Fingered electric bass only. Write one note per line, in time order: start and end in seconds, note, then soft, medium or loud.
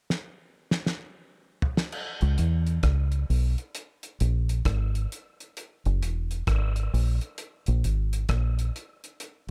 2.22 2.36 C#2 medium
2.39 2.78 E2 medium
2.84 3.23 C#2 medium
3.30 3.55 B1 medium
4.21 4.60 A#1 medium
4.66 5.05 G#1 medium
5.86 6.02 F#1 loud
6.02 6.42 E1 medium
6.48 6.87 G#1 medium
6.94 7.18 A#1 medium
7.68 7.82 A#1 medium
7.84 8.24 G#1 medium
8.29 8.69 A#1 medium